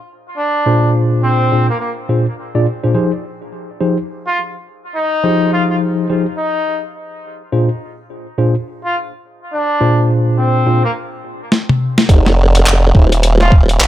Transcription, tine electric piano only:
0.66 1.50 A#2 medium
0.66 1.50 D4 medium
0.66 1.50 F4 medium
0.66 1.50 G#4 medium
0.66 1.50 C5 loud
1.52 1.68 A#2 medium
1.52 1.68 D4 medium
1.52 1.68 F4 medium
1.52 1.68 G#4 medium
1.52 1.68 C5 medium
2.09 2.25 A#2 medium
2.09 2.25 D4 medium
2.09 2.25 F4 medium
2.09 2.25 G#4 medium
2.09 2.25 C5 medium
2.55 2.65 A#2 medium
2.55 2.65 D4 medium
2.55 2.65 F4 medium
2.55 2.65 G#4 medium
2.55 2.65 D5 medium
2.84 2.93 A#2 medium
2.84 2.93 D4 medium
2.84 2.93 F4 medium
2.84 2.93 G#4 medium
2.84 2.93 C5 medium
2.95 3.11 F3 medium
2.95 3.11 D#4 medium
2.95 3.11 G4 medium
2.95 3.11 G#4 medium
2.95 3.11 C5 medium
3.81 3.97 F3 medium
3.81 3.96 D#4 medium
3.81 3.96 G4 medium
3.81 3.97 G#4 medium
3.81 3.96 C5 medium
5.24 6.07 F3 medium
5.24 6.07 D#4 medium
5.24 6.07 G4 medium
5.24 6.07 G#4 medium
5.24 6.07 C5 loud
6.10 6.25 F3 medium
6.10 6.25 D#4 medium
6.10 6.25 G4 medium
6.10 6.25 G#4 medium
6.10 6.25 C5 medium
7.52 7.68 A#2 medium
7.52 7.68 D4 medium
7.52 7.68 F4 medium
7.52 7.68 G#4 medium
7.52 7.68 C5 medium
8.38 8.54 A#2 medium
8.38 8.54 D4 medium
8.38 8.54 F4 medium
8.38 8.54 G#4 medium
8.38 8.54 C5 medium
9.81 10.64 A#2 medium
9.81 10.64 D4 medium
9.81 10.64 F4 medium
9.81 10.64 G#4 medium
9.81 10.64 C5 loud
10.66 10.82 A#2 medium
10.66 10.82 D4 medium
10.66 10.82 F4 medium
10.66 10.82 G#4 medium
10.66 10.82 C5 medium
12.09 12.25 D#4 medium
12.09 12.25 G4 medium
12.09 12.25 G#4 medium
12.09 12.25 C5 medium
12.95 13.11 D#4 medium
12.95 13.11 G4 medium
12.95 13.11 G#4 medium
12.95 13.11 C5 medium

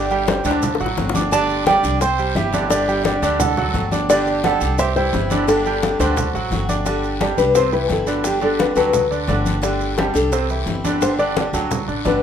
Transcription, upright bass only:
0.00 0.39 G1 medium
0.45 0.77 D2 loud
0.80 0.96 A1 medium
0.97 1.78 G1 medium
1.84 2.32 C2 medium
2.35 3.16 G1 loud
3.22 3.71 D2 medium
3.74 4.55 G1 loud
4.61 5.09 C2 medium
5.13 5.94 G1 loud
5.99 6.32 D2 medium
6.34 6.50 A1 medium
6.51 7.32 G1 medium
7.38 7.86 C2 medium
7.89 8.71 G1 medium
8.76 9.24 D2 medium
9.28 10.09 G1 loud
10.15 10.63 C2 medium
10.66 11.47 G1 medium
11.53 11.85 D2 medium
11.88 12.04 A1 medium
12.05 12.23 G1 medium

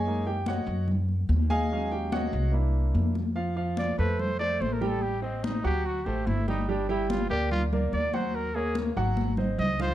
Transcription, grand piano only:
0.00 0.24 G#4 medium
0.00 0.24 C#5 medium
0.00 0.24 D#5 medium
0.00 0.24 G#5 loud
0.06 0.33 G#3 medium
0.06 0.34 A#3 medium
0.06 0.34 D#4 medium
0.27 0.47 G4 medium
0.27 0.46 G5 medium
0.48 0.86 F#4 medium
0.48 0.86 C#5 medium
0.48 0.86 D#5 medium
0.48 0.86 F#5 medium
1.50 1.89 G#4 medium
1.50 1.89 D#5 medium
1.50 1.71 F5 medium
1.50 1.89 G#5 loud
1.72 2.50 F#3 medium
1.72 2.50 G#3 medium
1.72 2.51 C#4 medium
1.72 2.51 F5 medium
1.92 2.12 G4 medium
1.92 2.12 G5 medium
2.13 2.51 F#4 medium
2.13 2.51 C#5 medium
2.13 2.51 D#5 medium
2.13 2.51 F#5 loud
2.52 3.12 A#3 medium
2.52 3.12 D4 medium
2.52 3.13 E4 medium
3.35 3.53 F3 medium
3.35 3.53 F4 medium
3.35 3.53 F5 medium
3.56 3.91 F3 medium
3.56 3.91 F4 medium
3.56 3.91 F5 medium
3.99 4.33 A3 medium
3.99 4.33 A4 medium
3.99 4.33 C5 medium
4.40 4.74 A3 medium
4.40 4.74 A4 medium
4.40 4.74 C5 medium
4.81 5.15 G3 medium
4.81 5.15 G4 medium
4.81 5.16 G5 medium
5.22 5.56 C4 medium
5.22 5.57 C5 medium
5.22 5.57 D#5 medium
5.64 5.98 F#3 medium
5.64 5.98 F#4 medium
5.64 5.99 F#5 medium
6.06 6.40 A3 medium
6.06 6.40 A4 medium
6.06 6.40 C5 medium
6.48 6.65 G3 medium
6.48 6.65 G4 medium
6.48 6.65 G5 medium
6.69 6.85 G3 medium
6.69 6.86 G4 medium
6.69 6.86 G5 medium
6.89 7.23 G3 medium
6.89 7.23 G4 medium
6.89 7.23 G5 medium
7.30 7.64 A#3 medium
7.30 7.65 A#4 medium
7.30 7.65 D5 medium
7.73 8.06 A#3 medium
7.73 8.06 A#4 medium
7.73 8.07 D5 medium
8.14 8.47 F#3 medium
8.14 8.48 F#4 medium
8.14 8.48 F#5 medium
8.56 8.89 A#3 medium
8.56 8.89 A#4 medium
8.56 8.90 C#5 medium
8.97 9.30 F#3 medium
8.97 9.31 F#4 medium
8.97 9.31 F#5 medium
9.38 9.72 C4 medium
9.38 9.72 C5 medium
9.38 9.72 D#5 medium
9.80 9.94 F3 medium
9.80 9.94 F4 medium
9.80 9.94 F5 medium

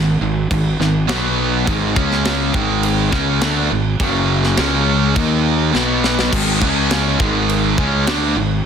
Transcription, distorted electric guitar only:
0.00 0.16 G#2 medium
0.00 0.16 D#3 medium
0.21 0.45 G#2 medium
0.21 0.45 D#3 medium
0.51 0.74 G#2 medium
0.51 0.74 D#3 medium
0.80 1.03 G#2 medium
0.80 1.03 D#3 medium
1.07 1.65 B2 medium
1.07 1.66 F#3 loud
1.07 1.66 B3 loud
1.66 1.95 G#2 loud
1.66 1.95 D#3 loud
1.66 1.95 G#3 loud
1.95 2.53 C#3 medium
1.95 2.53 G#3 medium
1.95 2.54 C#4 loud
2.54 3.11 G#2 medium
2.54 3.11 D#3 loud
2.54 3.11 G#3 loud
3.12 3.40 C#3 medium
3.12 3.41 G#3 medium
3.12 3.41 C#4 loud
3.42 3.70 D3 loud
3.42 3.70 A3 loud
3.42 3.70 D4 loud
3.71 3.94 G#2 medium
3.71 3.94 D#3 medium
4.00 4.57 F#2 medium
4.00 4.57 C#3 loud
4.00 4.58 F#3 loud
4.58 5.15 C#3 medium
4.58 5.15 G#3 loud
4.58 5.16 C#4 loud
5.16 5.74 D#3 loud
5.16 5.75 A#3 loud
5.16 5.76 D#4 loud
5.74 6.32 B2 medium
5.74 6.32 F#3 loud
5.74 6.32 B3 loud
6.33 6.61 G#2 medium
6.33 6.62 D#3 loud
6.33 6.61 G#3 loud
6.62 7.19 C#3 medium
6.62 7.19 G#3 medium
6.62 7.20 C#4 loud
7.20 7.77 G#2 medium
7.20 7.78 D#3 loud
7.20 7.77 G#3 loud
7.78 8.06 C#3 medium
7.78 8.06 G#3 loud
7.78 8.07 C#4 medium
8.06 8.35 D3 medium
8.06 8.35 A3 medium
8.06 8.36 D4 loud
8.37 8.60 G#2 medium
8.37 8.60 D#3 medium

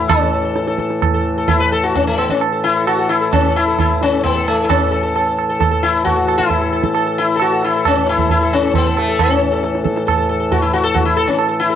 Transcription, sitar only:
0.09 0.75 C#4 medium
0.09 0.21 A4 soft
0.23 0.33 A4 soft
0.34 0.44 A4 soft
0.45 0.54 A4 soft
0.55 0.66 A4 soft
0.67 0.78 A4 soft
0.79 1.01 A4 soft
1.14 1.35 A4 soft
1.38 1.59 A4 soft
1.48 1.60 E4 loud
1.60 1.72 B4 loud
1.72 1.84 A4 loud
1.83 1.94 F#4 loud
1.96 2.07 C#4 medium
2.07 2.17 A3 medium
2.18 2.30 B3 medium
2.30 2.41 C#4 medium
2.52 2.74 A4 soft
2.64 2.87 E4 loud
2.76 2.97 A4 soft
2.87 3.09 F#4 loud
2.99 3.20 A4 soft
3.09 3.33 E4 medium
3.22 3.43 A4 soft
3.33 3.56 C#4 medium
3.45 3.66 A4 soft
3.56 3.79 E4 loud
3.68 3.89 A4 soft
3.80 4.01 E4 medium
4.03 4.23 C#4 loud
4.13 4.34 A4 soft
4.23 4.47 B3 loud
4.35 4.57 A4 soft
4.48 4.65 A3 medium
4.64 4.70 E4 medium
4.69 5.34 C#4 medium
4.81 4.90 A4 soft
4.91 5.01 A4 soft
5.03 5.14 A4 soft
5.16 5.25 A4 soft
5.26 5.47 A4 soft
5.49 5.59 A4 soft
5.60 5.70 A4 soft
5.71 5.92 A4 soft
5.83 6.04 E4 loud
5.95 6.15 A4 soft
6.05 6.37 F#4 loud
6.16 6.26 A4 soft
6.27 6.48 A4 soft
6.38 7.02 E4 loud
6.49 6.60 A4 soft
6.61 6.71 A4 soft
6.73 6.82 A4 soft
6.83 6.94 A4 soft
6.95 7.05 A4 soft
7.06 7.27 A4 soft
7.18 7.35 E4 loud
7.35 7.41 A4 medium
7.41 7.62 F#4 medium
7.52 7.73 A4 soft
7.64 7.86 E4 medium
7.76 7.96 A4 soft
7.87 8.09 C#4 medium
7.97 8.17 A4 soft
8.09 8.29 E4 loud
8.20 8.40 A4 soft
8.31 8.53 E4 loud
8.42 8.62 A4 soft
8.53 8.73 C#4 loud
8.63 8.84 A4 soft
8.75 8.97 B3 loud
8.86 9.06 A4 soft
8.98 9.20 A3 medium
9.09 9.28 A4 soft
9.20 9.81 C#4 medium
9.31 9.40 A4 soft
9.41 9.51 A4 soft
9.52 9.62 A4 soft
9.63 9.83 A4 soft
9.84 9.95 A4 soft
9.96 10.05 A4 soft
10.07 10.17 A4 soft
10.18 10.28 A4 soft
10.29 10.39 A4 soft
10.40 10.60 A4 soft
10.52 10.62 F#4 medium
10.62 10.73 E4 medium
10.73 10.84 F#4 loud
10.83 10.94 A4 loud
10.94 11.05 F#4 loud
11.05 11.16 E4 medium
11.16 11.27 A4 medium
11.27 11.37 C#4 medium
11.39 11.47 A4 soft
11.48 11.68 A4 soft
11.60 11.75 E4 loud
11.70 11.75 A4 soft

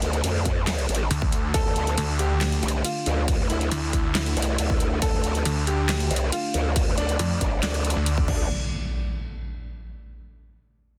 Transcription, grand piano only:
1.54 2.11 A4 loud
2.19 2.76 G4 medium
2.84 3.41 F4 loud
3.50 4.07 E4 loud
4.15 4.94 E4 loud
5.02 5.59 A4 loud
5.67 6.24 G4 loud
6.32 6.89 F4 loud
6.98 7.54 D4 loud
7.63 8.27 D4 loud
8.28 8.44 D4 medium

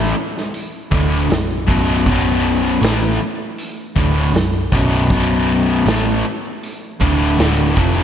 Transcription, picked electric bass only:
0.00 0.12 A1 medium
0.92 1.27 D1 medium
1.29 1.65 B0 medium
1.68 2.03 B0 medium
2.06 2.78 B0 medium
2.82 3.17 A1 medium
3.96 4.32 D1 medium
4.33 4.69 B0 medium
4.72 5.08 B0 medium
5.10 5.82 B0 medium
5.85 6.21 A1 medium
7.00 7.36 D1 medium
7.39 7.74 D1 medium
7.77 8.03 F1 medium

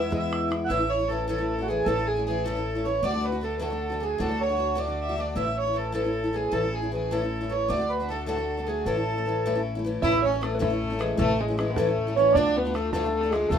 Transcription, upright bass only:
0.00 0.67 E2 medium
0.70 1.84 A1 medium
1.86 3.01 A1 medium
3.02 4.17 D2 medium
4.20 5.34 D2 medium
5.36 6.50 A1 medium
6.52 7.67 A1 medium
7.70 8.84 D2 medium
8.86 10.00 A1 medium
10.02 11.17 A1 medium
11.18 12.33 A1 medium
12.34 13.49 D2 medium
13.50 13.59 D2 medium

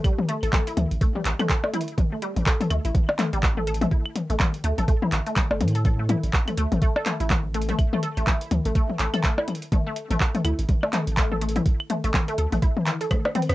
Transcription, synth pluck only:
0.04 0.11 G3 loud
0.28 0.35 A3 loud
0.43 0.45 A4 medium
0.53 0.57 A3 medium
0.67 0.72 E4 medium
1.01 1.04 A3 medium
1.15 1.20 G3 loud
1.40 1.44 A3 loud
1.50 1.52 A4 medium
1.64 1.67 A3 medium
1.74 1.81 E4 medium
2.12 2.14 A3 medium
2.22 2.29 G3 loud
2.46 2.53 A3 loud
2.61 2.63 A4 medium
2.70 2.75 A3 medium
2.85 2.90 E4 medium
3.19 3.22 A3 medium
3.33 3.38 G3 loud
3.57 3.62 A3 loud
3.67 3.70 A4 medium
3.81 3.85 A3 medium
3.91 3.98 E4 medium
4.30 4.32 A3 medium
4.40 4.47 G3 loud
4.64 4.71 A3 loud
4.78 4.80 A4 medium
4.88 4.93 A3 medium
5.03 5.07 E4 medium
5.27 5.29 A3 medium
5.37 5.41 G3 medium
5.51 5.56 A3 medium
5.75 5.78 A4 medium
5.85 5.88 A4 medium
5.99 6.02 A3 medium
6.09 6.16 E4 medium
6.48 6.50 A3 medium
6.58 6.62 A3 loud
6.82 6.89 A3 loud
6.96 6.98 A4 medium
7.06 7.11 A3 medium
7.20 7.25 E4 medium
7.54 7.57 A3 medium
7.69 7.72 A3 loud
7.93 7.98 A3 loud
8.03 8.06 A4 medium
8.17 8.20 A3 medium
8.27 8.34 E4 medium
8.66 8.68 A3 medium
8.75 8.80 A3 loud
9.00 9.06 A3 loud
9.14 9.16 A4 medium
9.24 9.28 A3 medium
9.38 9.43 E4 medium
9.72 9.75 A3 medium
9.87 9.90 A3 loud
10.11 10.15 A3 loud
10.21 10.23 A4 medium
10.35 10.38 A3 medium
10.45 10.52 E4 medium
10.83 10.85 A3 medium
10.93 10.98 A3 loud
11.17 11.24 A3 loud
11.32 11.34 A4 medium
11.41 11.46 A3 medium
11.56 11.61 E4 medium
11.90 11.93 A3 medium
12.04 12.07 A3 loud
12.28 12.33 A3 loud
12.38 12.41 A4 medium
12.53 12.56 A3 medium
12.62 12.69 E4 medium
12.87 12.89 E3 loud
13.01 13.04 A4 loud
13.11 13.15 A3 medium
13.35 13.42 C4 loud

